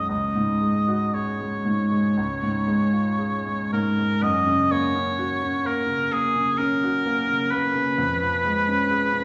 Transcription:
Already playing: grand piano B1 F#2 G#3 D#4 G#4
0.09 grand piano C#2, oboe D#5
0.35 grand piano G#2
0.61 grand piano G#3
0.88 grand piano F#4
1.14 grand piano G#4, oboe C#5
1.41 grand piano G#3
1.65 grand piano G#2
1.92 grand piano G#3
2.17 grand piano C#2
2.42 grand piano G#2
2.68 grand piano G#3
2.93 grand piano F4
3.19 grand piano G#4
3.45 grand piano G#3
3.73 grand piano G#2, oboe A#4
3.98 grand piano G#3
4.22 grand piano F#2, oboe D#5
4.47 grand piano C#3
4.71 grand piano A#3, oboe C#5
4.95 grand piano C#4
5.19 grand piano F#4
5.42 grand piano C#4
5.64 grand piano A#3, oboe A#4
5.87 grand piano C#3
6.11 grand piano A#3, oboe G#4
6.35 grand piano C#3
6.58 grand piano C#4, oboe A#4
6.84 grand piano F#4
7.06 grand piano A#3
7.29 grand piano C#3
7.51 grand piano A#3, oboe B4
7.75 grand piano C#3
7.98 grand piano F2
8.22 grand piano F3
8.45 grand piano G#3
8.68 grand piano C#4
8.91 grand piano G#4
9.13 grand piano C#4

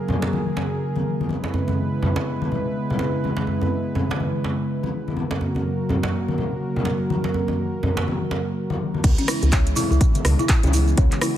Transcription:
Already playing: analog synth pad C#3 F#3 A#3 G#4 A#4
0.08 djembe tone, high conga, low conga
0.22 djembe slap, muted conga
0.33 high conga
0.57 djembe slap, muted conga
0.96 muted conga, high conga
1.21 high conga
1.29 analog synth pad G#3 B3 E4 B4, muted conga, high conga
1.44 djembe slap
1.54 djembe tone
1.68 muted conga, djembe tone, high conga
2.02 djembe tone, high conga, low conga
2.16 djembe slap, muted conga
2.42 high conga
2.52 muted conga, low conga
2.90 muted conga, low conga
2.99 djembe slap
3.24 muted conga, high conga
3.37 djembe slap
3.47 djembe tone
3.61 muted conga, djembe tone, high conga
3.95 djembe tone, high conga, low conga
4.10 muted conga, djembe slap
4.20 high conga
4.44 djembe slap, muted conga
4.83 muted conga, high conga
5.08 high conga
5.16 analog synth pad F#3 A#3 F#4 A#4, muted conga, high conga
5.31 djembe slap
5.41 djembe tone
5.55 muted conga, high conga, djembe tone
5.89 high conga, djembe tone, low conga
6.03 djembe slap, muted conga
6.28 high conga
6.38 muted conga, low conga
6.76 muted conga, low conga
6.85 djembe slap
7.10 muted conga, high conga
7.24 djembe slap
7.34 djembe tone
7.48 muted conga, djembe tone, high conga
7.83 djembe tone, high conga, low conga
7.97 djembe slap, muted conga
8.08 high conga
8.31 djembe slap, muted conga
8.70 muted conga, high conga
8.94 high conga
9.04 fm bass C#2, analog synth pad C#3 E3 G#3 B3 E4, kick, closed hi-hat, crash, muted conga, high conga, maracas
9.18 marimba C#4, closed hi-hat, maracas
9.28 marimba E4, cross-stick, open hi-hat, muted conga, maracas
9.42 fm bass C#2, closed hi-hat, high conga, maracas
9.52 marimba C#5, kick, clap, closed hi-hat, muted conga, maracas
9.66 closed hi-hat, maracas
9.76 marimba E4, open hi-hat, muted conga, high conga, low conga, maracas
9.91 fm bass C#2, marimba E4, maracas
10.01 kick, closed hi-hat, maracas
10.15 closed hi-hat, muted conga, high conga, maracas
10.25 fm bass C#2, cross-stick, open hi-hat, low conga, maracas
10.39 marimba E4, closed hi-hat, muted conga, maracas
10.49 kick, clap, closed hi-hat, maracas
10.63 fm bass C#2, marimba C#4, closed hi-hat, muted conga, low conga, maracas
10.73 marimba E4, open hi-hat, maracas
10.87 maracas
10.97 fm bass C#2, analog synth pad F#4, marimba C#5, kick, closed hi-hat, muted conga, high conga, maracas
11.12 clap, closed hi-hat, maracas
11.21 marimba E4, cross-stick, open hi-hat, muted conga, maracas

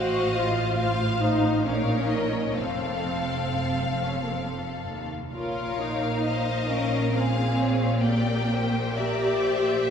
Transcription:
Already playing: double bass section A1, cello section A2, viola section F#4, violin section C5 D#5 F5
0.36 viola section F4
0.78 violin section C5 F5
1.21 viola section D#4, violin section C5
1.65 double bass section A#1, cello section A#2, viola section C#4, violin section A#4 C#5 F5
1.73 viola section D#4
1.82 viola section C#4
1.90 viola section D#4
1.97 viola section C#4
2.06 viola section D#4
2.10 violin section D#5
2.15 viola section C#4
2.23 viola section D#4
2.31 viola section C#4
2.56 double bass section F1, cello section F2, viola section C4, violin section A4 F5
3.47 cello section F#2
3.95 cello section F2
4.03 viola section C#4
4.14 viola section C4
4.23 viola section A#3
4.32 viola section C4
4.87 cello section D#2
5.33 double bass section A#1, cello section A#2, viola section F4, violin section A#4 C#5 F5
5.79 viola section D#4
6.25 violin section C5 D#5
6.69 viola section C#4, violin section A#4
7.13 viola section C4, violin section G#4 F5
7.57 violin section C#5
8.01 viola section A#3, violin section G4 D5 G5
8.49 violin section C5
8.96 viola section G4, violin section A#4 D5 E5
9.40 violin section C5
9.81 violin section E5

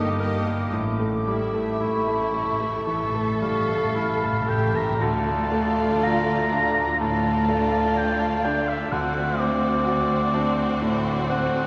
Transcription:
Already playing: double bass section G1, cello section G2, grand piano G2 A3 A#3 D#4, viola section A#3, violin section G4 D#5, flute section D6
0.20 viola section A#3, violin section G4 D#5, grand piano A#4
0.46 grand piano A#3
0.72 double bass section A1, cello section A2, grand piano A2, timpani A2, flute section D6
0.81 timpani A2
0.89 timpani A2
0.97 timpani A2, grand piano A3
1.14 timpani A2
1.22 timpani A2, violin section E4
1.27 timpani A2, grand piano G3, viola section A3, violin section E5
1.39 timpani A2
1.47 timpani A2
1.54 timpani A2, grand piano A3
1.71 timpani A2
1.80 double bass section A1, timpani A2, cello section A2, grand piano E4, violin section E4, flute section C#6
1.96 timpani A2
2.04 timpani A2, grand piano A3
2.12 timpani A2
2.34 timpani A2, viola section A3, grand piano A4, violin section E5
2.45 timpani A2
2.53 timpani A2
2.61 grand piano A3
2.69 timpani A2
2.78 timpani A2
2.86 double bass section A1, timpani A2, cello section A2, grand piano E3, violin section A4
2.94 timpani A2
3.03 timpani A2
3.11 timpani A2, grand piano A3
3.19 timpani A2
3.28 timpani A2
3.41 grand piano G3, viola section A3, violin section E5, oboe F5
3.51 timpani A2
3.60 timpani A2
3.68 timpani A2, grand piano A3
3.76 timpani A2
3.84 timpani A2
3.92 double bass section A1, timpani A2, cello section A2, grand piano E4
4.08 timpani A2
4.16 timpani A2
4.22 timpani A2, grand piano A3
4.33 timpani A2
4.41 timpani A2
4.48 timpani A2, viola section A3, violin section G4 E5, grand piano A4, oboe G5
4.58 timpani A2
4.66 timpani A2
4.74 timpani A2, grand piano A3, oboe A#5
4.82 timpani A2
4.90 timpani A2
5.01 double bass section D2, grand piano D2, cello section D2, viola section A3, violin section F4 D5, oboe A5
5.52 grand piano A3
6.03 grand piano F4, oboe A#5
6.52 grand piano D4
7.00 grand piano A2, viola section A3, violin section F4 D5, oboe A5
7.48 grand piano A3
7.96 grand piano F4, oboe G5
8.20 oboe A5
8.43 grand piano D4, oboe G5
8.68 oboe E5
8.91 double bass section D2, cello section D2, grand piano D2, timpani D3, viola section C4, violin section F#4 D5, oboe F#5
9.39 grand piano C4, oboe D5
9.86 grand piano F#4
10.34 grand piano D4
10.81 grand piano A2
11.29 grand piano C4, oboe F#5

